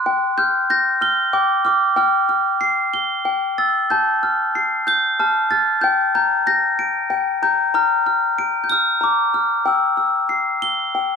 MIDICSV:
0, 0, Header, 1, 2, 480
1, 0, Start_track
1, 0, Tempo, 640342
1, 48, Time_signature, 3, 2, 24, 8
1, 8366, End_track
2, 0, Start_track
2, 0, Title_t, "Glockenspiel"
2, 0, Program_c, 0, 9
2, 46, Note_on_c, 0, 79, 82
2, 282, Note_on_c, 0, 91, 94
2, 290, Note_on_c, 0, 89, 70
2, 516, Note_off_c, 0, 91, 0
2, 525, Note_on_c, 0, 91, 93
2, 528, Note_on_c, 0, 94, 79
2, 743, Note_off_c, 0, 91, 0
2, 750, Note_off_c, 0, 89, 0
2, 759, Note_on_c, 0, 89, 87
2, 765, Note_on_c, 0, 103, 76
2, 991, Note_off_c, 0, 79, 0
2, 999, Note_on_c, 0, 86, 75
2, 1000, Note_on_c, 0, 79, 75
2, 1003, Note_off_c, 0, 89, 0
2, 1235, Note_on_c, 0, 89, 71
2, 1237, Note_off_c, 0, 86, 0
2, 1246, Note_on_c, 0, 86, 78
2, 1464, Note_off_c, 0, 79, 0
2, 1470, Note_off_c, 0, 89, 0
2, 1473, Note_on_c, 0, 79, 82
2, 1477, Note_off_c, 0, 94, 0
2, 1477, Note_off_c, 0, 103, 0
2, 1479, Note_on_c, 0, 89, 75
2, 1485, Note_off_c, 0, 86, 0
2, 1708, Note_off_c, 0, 89, 0
2, 1717, Note_on_c, 0, 89, 65
2, 1954, Note_on_c, 0, 96, 73
2, 2200, Note_on_c, 0, 103, 68
2, 2429, Note_off_c, 0, 79, 0
2, 2438, Note_on_c, 0, 79, 70
2, 2440, Note_off_c, 0, 96, 0
2, 2442, Note_off_c, 0, 89, 0
2, 2442, Note_off_c, 0, 103, 0
2, 2685, Note_on_c, 0, 93, 80
2, 2686, Note_on_c, 0, 88, 69
2, 2926, Note_on_c, 0, 91, 81
2, 2928, Note_off_c, 0, 79, 0
2, 2930, Note_off_c, 0, 88, 0
2, 2934, Note_on_c, 0, 81, 78
2, 2937, Note_off_c, 0, 93, 0
2, 3171, Note_on_c, 0, 89, 65
2, 3413, Note_on_c, 0, 96, 75
2, 3641, Note_off_c, 0, 91, 0
2, 3650, Note_on_c, 0, 91, 86
2, 3657, Note_on_c, 0, 105, 70
2, 3876, Note_off_c, 0, 91, 0
2, 3885, Note_off_c, 0, 89, 0
2, 3889, Note_off_c, 0, 81, 0
2, 3894, Note_on_c, 0, 89, 76
2, 3898, Note_on_c, 0, 81, 76
2, 4125, Note_off_c, 0, 89, 0
2, 4127, Note_on_c, 0, 93, 89
2, 4134, Note_on_c, 0, 89, 68
2, 4358, Note_on_c, 0, 91, 90
2, 4374, Note_off_c, 0, 89, 0
2, 4374, Note_off_c, 0, 96, 0
2, 4376, Note_off_c, 0, 81, 0
2, 4376, Note_off_c, 0, 105, 0
2, 4376, Note_on_c, 0, 79, 85
2, 4377, Note_off_c, 0, 93, 0
2, 4601, Note_off_c, 0, 91, 0
2, 4610, Note_on_c, 0, 91, 85
2, 4611, Note_on_c, 0, 82, 66
2, 4838, Note_off_c, 0, 91, 0
2, 4847, Note_on_c, 0, 91, 73
2, 4850, Note_on_c, 0, 94, 94
2, 5089, Note_on_c, 0, 98, 74
2, 5315, Note_off_c, 0, 79, 0
2, 5324, Note_on_c, 0, 79, 74
2, 5557, Note_off_c, 0, 82, 0
2, 5559, Note_off_c, 0, 91, 0
2, 5566, Note_on_c, 0, 82, 72
2, 5568, Note_on_c, 0, 91, 87
2, 5588, Note_off_c, 0, 94, 0
2, 5795, Note_off_c, 0, 82, 0
2, 5803, Note_off_c, 0, 79, 0
2, 5804, Note_on_c, 0, 82, 83
2, 5805, Note_off_c, 0, 98, 0
2, 5809, Note_on_c, 0, 89, 85
2, 5813, Note_off_c, 0, 91, 0
2, 6036, Note_off_c, 0, 89, 0
2, 6045, Note_on_c, 0, 89, 65
2, 6285, Note_on_c, 0, 98, 81
2, 6474, Note_on_c, 0, 91, 63
2, 6518, Note_on_c, 0, 106, 75
2, 6523, Note_off_c, 0, 91, 0
2, 6527, Note_off_c, 0, 89, 0
2, 6536, Note_on_c, 0, 89, 82
2, 6744, Note_off_c, 0, 82, 0
2, 6753, Note_on_c, 0, 82, 72
2, 6773, Note_off_c, 0, 89, 0
2, 6773, Note_on_c, 0, 86, 77
2, 7003, Note_on_c, 0, 89, 73
2, 7233, Note_off_c, 0, 82, 0
2, 7235, Note_off_c, 0, 106, 0
2, 7238, Note_off_c, 0, 98, 0
2, 7238, Note_on_c, 0, 79, 79
2, 7239, Note_off_c, 0, 89, 0
2, 7250, Note_on_c, 0, 88, 72
2, 7258, Note_off_c, 0, 86, 0
2, 7467, Note_off_c, 0, 88, 0
2, 7476, Note_on_c, 0, 88, 65
2, 7715, Note_on_c, 0, 96, 73
2, 7962, Note_on_c, 0, 103, 75
2, 8198, Note_off_c, 0, 79, 0
2, 8207, Note_on_c, 0, 79, 68
2, 8366, Note_off_c, 0, 79, 0
2, 8366, Note_off_c, 0, 88, 0
2, 8366, Note_off_c, 0, 96, 0
2, 8366, Note_off_c, 0, 103, 0
2, 8366, End_track
0, 0, End_of_file